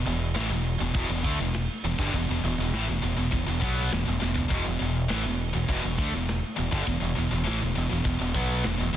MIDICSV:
0, 0, Header, 1, 4, 480
1, 0, Start_track
1, 0, Key_signature, 1, "minor"
1, 0, Tempo, 592300
1, 1729, Time_signature, 4, 2, 24, 8
1, 7268, End_track
2, 0, Start_track
2, 0, Title_t, "Distorted electric guitar"
2, 0, Program_c, 0, 30
2, 54, Note_on_c, 0, 40, 65
2, 59, Note_on_c, 0, 47, 74
2, 244, Note_off_c, 0, 40, 0
2, 247, Note_off_c, 0, 47, 0
2, 281, Note_on_c, 0, 45, 95
2, 290, Note_on_c, 0, 52, 109
2, 398, Note_off_c, 0, 45, 0
2, 403, Note_off_c, 0, 52, 0
2, 415, Note_on_c, 0, 40, 73
2, 420, Note_on_c, 0, 47, 68
2, 604, Note_off_c, 0, 40, 0
2, 607, Note_off_c, 0, 47, 0
2, 655, Note_on_c, 0, 40, 69
2, 655, Note_on_c, 0, 47, 74
2, 767, Note_off_c, 0, 40, 0
2, 772, Note_off_c, 0, 47, 0
2, 776, Note_on_c, 0, 40, 89
2, 788, Note_on_c, 0, 47, 107
2, 886, Note_off_c, 0, 40, 0
2, 892, Note_off_c, 0, 47, 0
2, 896, Note_on_c, 0, 40, 65
2, 903, Note_on_c, 0, 47, 79
2, 1011, Note_off_c, 0, 47, 0
2, 1013, Note_off_c, 0, 40, 0
2, 1014, Note_on_c, 0, 50, 99
2, 1020, Note_on_c, 0, 57, 116
2, 1125, Note_off_c, 0, 50, 0
2, 1127, Note_off_c, 0, 57, 0
2, 1141, Note_on_c, 0, 40, 67
2, 1147, Note_on_c, 0, 47, 74
2, 1327, Note_off_c, 0, 40, 0
2, 1330, Note_off_c, 0, 47, 0
2, 1498, Note_on_c, 0, 40, 66
2, 1506, Note_on_c, 0, 47, 75
2, 1614, Note_off_c, 0, 40, 0
2, 1618, Note_off_c, 0, 47, 0
2, 1623, Note_on_c, 0, 43, 96
2, 1629, Note_on_c, 0, 50, 104
2, 1729, Note_off_c, 0, 43, 0
2, 1732, Note_off_c, 0, 50, 0
2, 1748, Note_on_c, 0, 40, 63
2, 1757, Note_on_c, 0, 47, 80
2, 1859, Note_off_c, 0, 40, 0
2, 1863, Note_off_c, 0, 47, 0
2, 1871, Note_on_c, 0, 40, 63
2, 1877, Note_on_c, 0, 47, 77
2, 1974, Note_off_c, 0, 40, 0
2, 1981, Note_off_c, 0, 47, 0
2, 1983, Note_on_c, 0, 40, 69
2, 1990, Note_on_c, 0, 47, 73
2, 2097, Note_off_c, 0, 40, 0
2, 2100, Note_off_c, 0, 47, 0
2, 2109, Note_on_c, 0, 40, 70
2, 2109, Note_on_c, 0, 47, 74
2, 2217, Note_off_c, 0, 47, 0
2, 2219, Note_off_c, 0, 40, 0
2, 2220, Note_on_c, 0, 45, 84
2, 2231, Note_on_c, 0, 52, 95
2, 2328, Note_off_c, 0, 45, 0
2, 2333, Note_off_c, 0, 52, 0
2, 2337, Note_on_c, 0, 40, 68
2, 2343, Note_on_c, 0, 47, 73
2, 2439, Note_off_c, 0, 40, 0
2, 2445, Note_off_c, 0, 47, 0
2, 2449, Note_on_c, 0, 40, 67
2, 2455, Note_on_c, 0, 47, 75
2, 2558, Note_off_c, 0, 47, 0
2, 2559, Note_off_c, 0, 40, 0
2, 2568, Note_on_c, 0, 40, 67
2, 2568, Note_on_c, 0, 47, 73
2, 2672, Note_off_c, 0, 40, 0
2, 2674, Note_off_c, 0, 47, 0
2, 2682, Note_on_c, 0, 40, 65
2, 2684, Note_on_c, 0, 47, 79
2, 2797, Note_off_c, 0, 40, 0
2, 2798, Note_off_c, 0, 47, 0
2, 2807, Note_on_c, 0, 40, 63
2, 2808, Note_on_c, 0, 47, 67
2, 2908, Note_off_c, 0, 47, 0
2, 2917, Note_on_c, 0, 47, 96
2, 2927, Note_on_c, 0, 54, 101
2, 2929, Note_off_c, 0, 40, 0
2, 2930, Note_on_c, 0, 59, 117
2, 3157, Note_off_c, 0, 47, 0
2, 3162, Note_off_c, 0, 54, 0
2, 3163, Note_off_c, 0, 59, 0
2, 3165, Note_on_c, 0, 47, 71
2, 3167, Note_on_c, 0, 40, 65
2, 3278, Note_off_c, 0, 40, 0
2, 3282, Note_off_c, 0, 47, 0
2, 3287, Note_on_c, 0, 40, 62
2, 3291, Note_on_c, 0, 47, 76
2, 3395, Note_off_c, 0, 40, 0
2, 3402, Note_off_c, 0, 47, 0
2, 3404, Note_on_c, 0, 40, 61
2, 3412, Note_on_c, 0, 47, 64
2, 3510, Note_off_c, 0, 40, 0
2, 3510, Note_off_c, 0, 47, 0
2, 3519, Note_on_c, 0, 40, 70
2, 3519, Note_on_c, 0, 47, 68
2, 3624, Note_off_c, 0, 40, 0
2, 3628, Note_off_c, 0, 47, 0
2, 3634, Note_on_c, 0, 40, 90
2, 3638, Note_on_c, 0, 47, 102
2, 3753, Note_off_c, 0, 47, 0
2, 3755, Note_off_c, 0, 40, 0
2, 3763, Note_on_c, 0, 47, 67
2, 3765, Note_on_c, 0, 40, 59
2, 3875, Note_off_c, 0, 47, 0
2, 3877, Note_off_c, 0, 40, 0
2, 3884, Note_on_c, 0, 47, 79
2, 3887, Note_on_c, 0, 40, 63
2, 4079, Note_off_c, 0, 47, 0
2, 4081, Note_off_c, 0, 40, 0
2, 4122, Note_on_c, 0, 45, 94
2, 4128, Note_on_c, 0, 52, 101
2, 4239, Note_off_c, 0, 45, 0
2, 4242, Note_off_c, 0, 52, 0
2, 4244, Note_on_c, 0, 40, 60
2, 4246, Note_on_c, 0, 47, 70
2, 4439, Note_off_c, 0, 40, 0
2, 4440, Note_off_c, 0, 47, 0
2, 4483, Note_on_c, 0, 40, 62
2, 4484, Note_on_c, 0, 47, 78
2, 4596, Note_off_c, 0, 40, 0
2, 4606, Note_on_c, 0, 40, 93
2, 4607, Note_off_c, 0, 47, 0
2, 4616, Note_on_c, 0, 47, 112
2, 4721, Note_off_c, 0, 40, 0
2, 4726, Note_off_c, 0, 47, 0
2, 4731, Note_on_c, 0, 40, 62
2, 4741, Note_on_c, 0, 47, 76
2, 4844, Note_off_c, 0, 47, 0
2, 4847, Note_on_c, 0, 50, 96
2, 4851, Note_off_c, 0, 40, 0
2, 4852, Note_on_c, 0, 57, 119
2, 4961, Note_off_c, 0, 50, 0
2, 4964, Note_off_c, 0, 57, 0
2, 4964, Note_on_c, 0, 40, 69
2, 4964, Note_on_c, 0, 47, 69
2, 5159, Note_off_c, 0, 40, 0
2, 5159, Note_off_c, 0, 47, 0
2, 5319, Note_on_c, 0, 40, 67
2, 5323, Note_on_c, 0, 47, 67
2, 5436, Note_off_c, 0, 40, 0
2, 5439, Note_on_c, 0, 43, 85
2, 5442, Note_off_c, 0, 47, 0
2, 5446, Note_on_c, 0, 50, 100
2, 5558, Note_off_c, 0, 43, 0
2, 5561, Note_off_c, 0, 50, 0
2, 5564, Note_on_c, 0, 40, 67
2, 5565, Note_on_c, 0, 47, 68
2, 5665, Note_off_c, 0, 40, 0
2, 5670, Note_off_c, 0, 47, 0
2, 5675, Note_on_c, 0, 40, 68
2, 5679, Note_on_c, 0, 47, 69
2, 5786, Note_off_c, 0, 40, 0
2, 5787, Note_off_c, 0, 47, 0
2, 5795, Note_on_c, 0, 40, 67
2, 5797, Note_on_c, 0, 47, 81
2, 5913, Note_off_c, 0, 40, 0
2, 5915, Note_off_c, 0, 47, 0
2, 5922, Note_on_c, 0, 40, 68
2, 5924, Note_on_c, 0, 47, 76
2, 6024, Note_off_c, 0, 47, 0
2, 6028, Note_on_c, 0, 45, 92
2, 6038, Note_on_c, 0, 52, 108
2, 6046, Note_off_c, 0, 40, 0
2, 6152, Note_off_c, 0, 45, 0
2, 6156, Note_on_c, 0, 40, 66
2, 6157, Note_off_c, 0, 52, 0
2, 6157, Note_on_c, 0, 47, 77
2, 6274, Note_off_c, 0, 40, 0
2, 6280, Note_off_c, 0, 47, 0
2, 6283, Note_on_c, 0, 40, 62
2, 6289, Note_on_c, 0, 47, 79
2, 6388, Note_off_c, 0, 47, 0
2, 6390, Note_off_c, 0, 40, 0
2, 6398, Note_on_c, 0, 47, 82
2, 6399, Note_on_c, 0, 40, 68
2, 6508, Note_off_c, 0, 47, 0
2, 6509, Note_off_c, 0, 40, 0
2, 6518, Note_on_c, 0, 47, 77
2, 6519, Note_on_c, 0, 40, 71
2, 6626, Note_off_c, 0, 40, 0
2, 6632, Note_off_c, 0, 47, 0
2, 6635, Note_on_c, 0, 40, 71
2, 6641, Note_on_c, 0, 47, 78
2, 6752, Note_off_c, 0, 47, 0
2, 6762, Note_off_c, 0, 40, 0
2, 6762, Note_on_c, 0, 47, 99
2, 6768, Note_on_c, 0, 54, 114
2, 6770, Note_on_c, 0, 59, 109
2, 6998, Note_off_c, 0, 47, 0
2, 7001, Note_off_c, 0, 54, 0
2, 7001, Note_on_c, 0, 40, 66
2, 7003, Note_off_c, 0, 59, 0
2, 7007, Note_on_c, 0, 47, 66
2, 7104, Note_off_c, 0, 40, 0
2, 7107, Note_off_c, 0, 47, 0
2, 7114, Note_on_c, 0, 40, 68
2, 7117, Note_on_c, 0, 47, 77
2, 7227, Note_off_c, 0, 40, 0
2, 7231, Note_off_c, 0, 47, 0
2, 7236, Note_on_c, 0, 40, 66
2, 7240, Note_on_c, 0, 47, 72
2, 7268, Note_off_c, 0, 40, 0
2, 7268, Note_off_c, 0, 47, 0
2, 7268, End_track
3, 0, Start_track
3, 0, Title_t, "Fingered electric bass"
3, 0, Program_c, 1, 33
3, 49, Note_on_c, 1, 28, 91
3, 273, Note_off_c, 1, 28, 0
3, 287, Note_on_c, 1, 33, 103
3, 400, Note_off_c, 1, 33, 0
3, 407, Note_on_c, 1, 28, 81
3, 632, Note_off_c, 1, 28, 0
3, 652, Note_on_c, 1, 28, 82
3, 763, Note_off_c, 1, 28, 0
3, 767, Note_on_c, 1, 28, 93
3, 880, Note_off_c, 1, 28, 0
3, 885, Note_on_c, 1, 28, 94
3, 999, Note_off_c, 1, 28, 0
3, 1013, Note_on_c, 1, 38, 95
3, 1123, Note_off_c, 1, 38, 0
3, 1128, Note_on_c, 1, 28, 85
3, 1352, Note_off_c, 1, 28, 0
3, 1494, Note_on_c, 1, 28, 78
3, 1603, Note_off_c, 1, 28, 0
3, 1611, Note_on_c, 1, 31, 93
3, 1722, Note_off_c, 1, 31, 0
3, 1735, Note_on_c, 1, 28, 86
3, 1844, Note_off_c, 1, 28, 0
3, 1860, Note_on_c, 1, 28, 87
3, 1967, Note_off_c, 1, 28, 0
3, 1977, Note_on_c, 1, 28, 89
3, 2085, Note_off_c, 1, 28, 0
3, 2095, Note_on_c, 1, 28, 78
3, 2204, Note_off_c, 1, 28, 0
3, 2215, Note_on_c, 1, 33, 101
3, 2324, Note_off_c, 1, 33, 0
3, 2339, Note_on_c, 1, 28, 84
3, 2446, Note_off_c, 1, 28, 0
3, 2453, Note_on_c, 1, 28, 83
3, 2563, Note_off_c, 1, 28, 0
3, 2574, Note_on_c, 1, 28, 78
3, 2684, Note_off_c, 1, 28, 0
3, 2694, Note_on_c, 1, 28, 77
3, 2804, Note_off_c, 1, 28, 0
3, 2818, Note_on_c, 1, 28, 85
3, 2926, Note_off_c, 1, 28, 0
3, 2932, Note_on_c, 1, 35, 95
3, 3154, Note_off_c, 1, 35, 0
3, 3177, Note_on_c, 1, 28, 80
3, 3285, Note_off_c, 1, 28, 0
3, 3304, Note_on_c, 1, 28, 79
3, 3409, Note_off_c, 1, 28, 0
3, 3422, Note_on_c, 1, 28, 82
3, 3528, Note_off_c, 1, 28, 0
3, 3548, Note_on_c, 1, 28, 81
3, 3645, Note_off_c, 1, 28, 0
3, 3650, Note_on_c, 1, 28, 90
3, 3762, Note_off_c, 1, 28, 0
3, 3787, Note_on_c, 1, 28, 87
3, 3891, Note_off_c, 1, 28, 0
3, 3898, Note_on_c, 1, 28, 80
3, 4117, Note_off_c, 1, 28, 0
3, 4140, Note_on_c, 1, 33, 98
3, 4247, Note_off_c, 1, 33, 0
3, 4256, Note_on_c, 1, 28, 78
3, 4477, Note_off_c, 1, 28, 0
3, 4498, Note_on_c, 1, 28, 85
3, 4606, Note_off_c, 1, 28, 0
3, 4609, Note_on_c, 1, 28, 93
3, 4722, Note_off_c, 1, 28, 0
3, 4740, Note_on_c, 1, 28, 89
3, 4843, Note_off_c, 1, 28, 0
3, 4848, Note_on_c, 1, 38, 98
3, 4961, Note_off_c, 1, 38, 0
3, 4980, Note_on_c, 1, 28, 78
3, 5199, Note_off_c, 1, 28, 0
3, 5342, Note_on_c, 1, 28, 84
3, 5443, Note_off_c, 1, 28, 0
3, 5448, Note_on_c, 1, 31, 89
3, 5561, Note_off_c, 1, 31, 0
3, 5569, Note_on_c, 1, 28, 81
3, 5681, Note_off_c, 1, 28, 0
3, 5685, Note_on_c, 1, 28, 79
3, 5799, Note_off_c, 1, 28, 0
3, 5813, Note_on_c, 1, 28, 82
3, 5923, Note_off_c, 1, 28, 0
3, 5931, Note_on_c, 1, 28, 76
3, 6042, Note_off_c, 1, 28, 0
3, 6051, Note_on_c, 1, 33, 101
3, 6162, Note_off_c, 1, 33, 0
3, 6178, Note_on_c, 1, 28, 80
3, 6286, Note_off_c, 1, 28, 0
3, 6299, Note_on_c, 1, 28, 78
3, 6406, Note_off_c, 1, 28, 0
3, 6410, Note_on_c, 1, 28, 82
3, 6522, Note_off_c, 1, 28, 0
3, 6526, Note_on_c, 1, 28, 83
3, 6639, Note_off_c, 1, 28, 0
3, 6647, Note_on_c, 1, 28, 95
3, 6760, Note_off_c, 1, 28, 0
3, 6764, Note_on_c, 1, 35, 101
3, 6989, Note_off_c, 1, 35, 0
3, 7011, Note_on_c, 1, 28, 86
3, 7122, Note_off_c, 1, 28, 0
3, 7129, Note_on_c, 1, 28, 85
3, 7235, Note_off_c, 1, 28, 0
3, 7240, Note_on_c, 1, 28, 83
3, 7268, Note_off_c, 1, 28, 0
3, 7268, End_track
4, 0, Start_track
4, 0, Title_t, "Drums"
4, 47, Note_on_c, 9, 49, 70
4, 128, Note_off_c, 9, 49, 0
4, 282, Note_on_c, 9, 49, 85
4, 290, Note_on_c, 9, 38, 117
4, 363, Note_off_c, 9, 49, 0
4, 371, Note_off_c, 9, 38, 0
4, 525, Note_on_c, 9, 49, 66
4, 606, Note_off_c, 9, 49, 0
4, 768, Note_on_c, 9, 36, 104
4, 768, Note_on_c, 9, 49, 93
4, 849, Note_off_c, 9, 36, 0
4, 849, Note_off_c, 9, 49, 0
4, 1009, Note_on_c, 9, 36, 114
4, 1010, Note_on_c, 9, 49, 70
4, 1090, Note_off_c, 9, 36, 0
4, 1091, Note_off_c, 9, 49, 0
4, 1246, Note_on_c, 9, 49, 93
4, 1254, Note_on_c, 9, 38, 107
4, 1327, Note_off_c, 9, 49, 0
4, 1335, Note_off_c, 9, 38, 0
4, 1491, Note_on_c, 9, 49, 65
4, 1572, Note_off_c, 9, 49, 0
4, 1610, Note_on_c, 9, 36, 109
4, 1691, Note_off_c, 9, 36, 0
4, 1731, Note_on_c, 9, 36, 96
4, 1732, Note_on_c, 9, 49, 81
4, 1812, Note_off_c, 9, 36, 0
4, 1813, Note_off_c, 9, 49, 0
4, 1972, Note_on_c, 9, 49, 66
4, 2053, Note_off_c, 9, 49, 0
4, 2212, Note_on_c, 9, 49, 82
4, 2219, Note_on_c, 9, 38, 113
4, 2293, Note_off_c, 9, 49, 0
4, 2300, Note_off_c, 9, 38, 0
4, 2449, Note_on_c, 9, 49, 63
4, 2530, Note_off_c, 9, 49, 0
4, 2692, Note_on_c, 9, 36, 86
4, 2693, Note_on_c, 9, 49, 81
4, 2773, Note_off_c, 9, 36, 0
4, 2774, Note_off_c, 9, 49, 0
4, 2932, Note_on_c, 9, 36, 109
4, 2933, Note_on_c, 9, 49, 62
4, 3013, Note_off_c, 9, 36, 0
4, 3014, Note_off_c, 9, 49, 0
4, 3174, Note_on_c, 9, 49, 80
4, 3182, Note_on_c, 9, 38, 115
4, 3256, Note_off_c, 9, 49, 0
4, 3263, Note_off_c, 9, 38, 0
4, 3419, Note_on_c, 9, 38, 66
4, 3500, Note_off_c, 9, 38, 0
4, 3530, Note_on_c, 9, 43, 96
4, 3611, Note_off_c, 9, 43, 0
4, 3650, Note_on_c, 9, 36, 101
4, 3651, Note_on_c, 9, 49, 74
4, 3731, Note_off_c, 9, 36, 0
4, 3732, Note_off_c, 9, 49, 0
4, 3887, Note_on_c, 9, 49, 72
4, 3968, Note_off_c, 9, 49, 0
4, 4127, Note_on_c, 9, 49, 88
4, 4134, Note_on_c, 9, 38, 111
4, 4208, Note_off_c, 9, 49, 0
4, 4215, Note_off_c, 9, 38, 0
4, 4366, Note_on_c, 9, 49, 69
4, 4447, Note_off_c, 9, 49, 0
4, 4608, Note_on_c, 9, 36, 107
4, 4608, Note_on_c, 9, 49, 88
4, 4689, Note_off_c, 9, 36, 0
4, 4689, Note_off_c, 9, 49, 0
4, 4850, Note_on_c, 9, 36, 115
4, 4852, Note_on_c, 9, 49, 67
4, 4931, Note_off_c, 9, 36, 0
4, 4933, Note_off_c, 9, 49, 0
4, 5090, Note_on_c, 9, 49, 89
4, 5097, Note_on_c, 9, 38, 116
4, 5171, Note_off_c, 9, 49, 0
4, 5179, Note_off_c, 9, 38, 0
4, 5331, Note_on_c, 9, 49, 67
4, 5412, Note_off_c, 9, 49, 0
4, 5449, Note_on_c, 9, 36, 112
4, 5530, Note_off_c, 9, 36, 0
4, 5568, Note_on_c, 9, 49, 85
4, 5569, Note_on_c, 9, 36, 88
4, 5649, Note_off_c, 9, 49, 0
4, 5650, Note_off_c, 9, 36, 0
4, 5805, Note_on_c, 9, 49, 69
4, 5886, Note_off_c, 9, 49, 0
4, 6049, Note_on_c, 9, 49, 87
4, 6056, Note_on_c, 9, 38, 109
4, 6130, Note_off_c, 9, 49, 0
4, 6137, Note_off_c, 9, 38, 0
4, 6285, Note_on_c, 9, 49, 62
4, 6366, Note_off_c, 9, 49, 0
4, 6525, Note_on_c, 9, 36, 96
4, 6525, Note_on_c, 9, 49, 83
4, 6606, Note_off_c, 9, 36, 0
4, 6606, Note_off_c, 9, 49, 0
4, 6760, Note_on_c, 9, 49, 62
4, 6763, Note_on_c, 9, 36, 113
4, 6841, Note_off_c, 9, 49, 0
4, 6844, Note_off_c, 9, 36, 0
4, 6997, Note_on_c, 9, 49, 80
4, 7005, Note_on_c, 9, 38, 111
4, 7078, Note_off_c, 9, 49, 0
4, 7086, Note_off_c, 9, 38, 0
4, 7238, Note_on_c, 9, 49, 62
4, 7268, Note_off_c, 9, 49, 0
4, 7268, End_track
0, 0, End_of_file